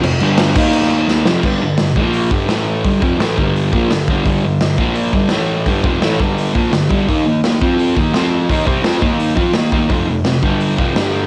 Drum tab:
CC |x-x-x-x-x-x-----|x---------------|----------------|----------------|
HH |----------------|----o---o---o---|o---o---o---o---|o---o---o---o---|
SD |----o----o--o-o-|----o-------o---|----o-------o---|----o-------o---|
BD |------o---------|o-----o---o-----|o-o---o---o---o-|o-----o---o-----|

CC |----------------|----------------|----------------|----------------|
HH |o---o---o---o---|o---o---o---o---|o---o---o---o---|o---o---o---o---|
SD |----o-------o---|----o-------o---|----o-------o---|----o-------o---|
BD |o-o---o---o---o-|o-----o---o-----|o-o---o---o---o-|o-----o---o-----|